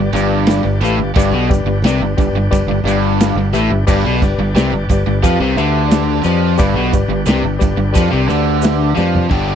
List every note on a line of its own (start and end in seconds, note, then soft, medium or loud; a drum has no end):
0.00 0.13 G1 medium
0.00 0.14 G2 medium
0.00 1.13 B4 medium
0.00 1.13 D5 medium
0.00 1.13 G5 medium
0.13 0.61 G1 loud
0.13 0.65 G2 loud
0.13 0.42 G4 medium
0.13 0.42 B4 medium
0.13 0.42 D5 medium
0.13 ride medium
0.13 shaker medium
0.47 0.76 G4 medium
0.47 0.76 B4 medium
0.47 0.76 D5 medium
0.47 snare loud
0.47 ride loud
0.47 shaker loud
0.65 0.81 G1 medium
0.65 0.82 G2 medium
0.81 0.97 A1 medium
0.81 0.99 A2 loud
0.81 1.10 G4 medium
0.81 1.10 B4 medium
0.81 1.11 F5 medium
0.81 ride medium
0.81 shaker medium
0.97 1.14 G1 medium
0.97 1.16 G2 medium
1.16 1.30 G1 medium
1.16 1.32 G2 loud
1.16 3.86 D4 medium
1.16 1.44 G4 loud
1.16 1.44 B4 loud
1.16 3.85 B4 medium
1.16 1.44 D5 loud
1.16 3.86 G5 medium
1.16 kick loud
1.16 ride loud
1.16 shaker loud
1.31 1.48 B1 medium
1.31 1.49 B2 loud
1.49 1.64 G1 medium
1.49 1.67 G2 medium
1.49 1.77 G4 medium
1.49 1.77 B4 medium
1.49 1.77 D5 medium
1.49 kick medium
1.49 ride medium
1.53 shaker medium
1.65 1.82 G1 medium
1.65 1.85 G2 medium
1.82 1.99 C2 medium
1.82 2.01 C3 loud
1.82 2.11 G4 medium
1.82 2.12 B4 medium
1.82 2.12 D5 medium
1.82 snare loud
1.82 ride loud
1.87 shaker medium
2.00 2.16 G1 medium
2.00 2.19 G2 medium
2.17 2.33 G1 medium
2.17 2.36 G2 medium
2.17 2.45 G4 medium
2.17 2.45 B4 medium
2.17 2.45 D5 medium
2.17 kick medium
2.17 ride medium
2.17 shaker medium
2.33 2.50 G1 medium
2.37 2.53 G2 medium
2.51 2.66 G1 medium
2.51 2.70 G2 medium
2.51 2.79 G4 loud
2.51 2.78 B4 medium
2.51 2.79 D5 loud
2.51 kick medium
2.51 ride loud
2.51 shaker loud
2.66 2.83 G1 medium
2.72 2.86 G2 medium
2.84 3.32 G1 loud
2.84 3.36 G2 loud
2.84 3.12 G4 medium
2.84 3.13 B4 medium
2.84 3.12 D5 medium
2.84 ride medium
2.88 shaker medium
3.20 3.47 G4 medium
3.20 3.47 B4 medium
3.20 3.47 F5 loud
3.20 snare loud
3.20 ride loud
3.20 shaker loud
3.35 3.52 G1 medium
3.35 3.54 G2 medium
3.52 3.69 A1 medium
3.52 3.70 A2 loud
3.52 3.81 G4 medium
3.52 3.81 B4 medium
3.52 3.81 E5 medium
3.52 ride medium
3.52 shaker medium
3.70 3.86 G1 medium
3.70 3.87 G2 medium
3.87 4.04 G1 medium
3.87 4.04 G2 loud
3.87 4.14 G4 loud
3.87 4.14 B4 loud
3.87 6.57 B4 medium
3.87 4.14 D5 loud
3.87 6.58 D5 medium
3.87 6.57 G5 medium
3.87 kick loud
3.87 crash loud
3.87 shaker loud
4.04 4.20 B1 medium
4.04 4.21 B2 loud
4.22 4.37 G1 medium
4.22 4.39 G2 medium
4.22 4.49 G4 medium
4.22 4.49 B4 medium
4.22 4.49 D5 loud
4.22 kick medium
4.22 ride medium
4.22 shaker medium
4.38 4.54 G1 medium
4.38 4.56 G2 medium
4.55 4.71 C2 medium
4.55 4.72 C3 loud
4.55 4.83 G4 medium
4.55 4.83 B4 medium
4.55 4.83 D5 medium
4.55 snare loud
4.55 ride medium
4.55 shaker medium
4.72 4.88 G1 medium
4.72 4.89 G2 medium
4.89 5.05 G1 medium
4.89 5.07 G2 medium
4.89 5.17 G4 medium
4.89 5.17 B4 medium
4.89 5.17 D5 medium
4.89 kick medium
4.89 ride medium
4.89 shaker medium
5.07 5.22 G1 medium
5.07 5.24 G2 medium
5.23 5.39 F2 medium
5.23 5.39 F3 loud
5.23 5.50 G4 loud
5.23 5.51 B4 loud
5.23 5.50 F5 loud
5.23 kick medium
5.23 ride medium
5.23 shaker loud
5.40 5.56 C2 loud
5.40 5.56 C3 loud
5.56 6.21 D2 loud
5.56 6.24 D3 loud
5.56 5.84 G4 medium
5.56 5.84 B4 medium
5.56 5.84 E5 loud
5.56 ride medium
5.56 shaker medium
5.89 6.17 G4 medium
5.89 6.17 B4 medium
5.89 6.17 D5 medium
5.89 snare loud
5.89 ride loud
5.89 shaker medium
6.24 6.56 F2 medium
6.24 6.57 F3 loud
6.24 6.52 G4 medium
6.24 6.52 B4 medium
6.24 6.52 D5 medium
6.24 ride medium
6.24 shaker medium
6.58 6.74 G1 medium
6.58 6.75 G2 loud
6.58 9.28 D4 medium
6.58 6.86 G4 loud
6.58 9.27 B4 medium
6.58 6.86 B4 loud
6.58 6.86 D5 loud
6.58 9.27 G5 medium
6.58 kick loud
6.58 ride loud
6.58 shaker medium
6.74 6.91 B1 loud
6.74 6.92 B2 loud
6.92 7.08 G1 medium
6.92 7.08 G2 medium
6.92 7.20 G4 medium
6.92 7.20 B4 medium
6.92 7.21 D5 medium
6.92 kick medium
6.92 ride medium
6.92 shaker medium
7.08 7.25 G1 medium
7.08 7.26 G2 medium
7.25 7.42 C2 loud
7.25 7.43 C3 loud
7.25 7.53 G4 medium
7.25 7.54 B4 medium
7.25 7.54 D5 medium
7.25 snare loud
7.25 ride loud
7.25 shaker medium
7.43 7.59 G1 medium
7.43 7.60 G2 medium
7.59 7.77 G1 medium
7.59 7.76 G2 medium
7.59 7.87 G4 medium
7.59 7.87 B4 medium
7.59 7.87 D5 medium
7.59 kick medium
7.59 ride medium
7.59 shaker medium
7.77 7.93 G1 medium
7.77 7.94 G2 medium
7.93 8.11 F2 medium
7.93 8.10 F3 loud
7.93 8.21 G4 loud
7.93 8.21 B4 medium
7.93 8.21 D5 loud
7.93 kick medium
7.93 shaker loud
7.97 ride loud
8.11 8.28 C2 medium
8.11 8.29 C3 loud
8.28 8.93 D2 loud
8.28 8.95 D3 loud
8.28 8.55 G4 medium
8.28 8.56 B4 medium
8.28 8.56 D5 medium
8.28 ride medium
8.28 shaker medium
8.62 8.90 G4 medium
8.62 8.90 B4 medium
8.62 8.90 E5 medium
8.62 snare loud
8.62 ride loud
8.62 shaker medium
8.95 9.29 F2 medium
8.95 9.29 F3 loud
8.95 9.24 G4 medium
8.95 9.25 B4 medium
8.95 9.25 D5 medium
8.95 snare medium
8.95 shaker medium
9.15 floor tom medium
9.30 9.55 G1 medium
9.30 9.55 G2 medium
9.30 9.55 D3 loud
9.30 9.55 G3 medium
9.30 9.55 B3 medium
9.30 9.55 D4 medium
9.30 9.55 G4 medium
9.30 kick loud
9.30 crash medium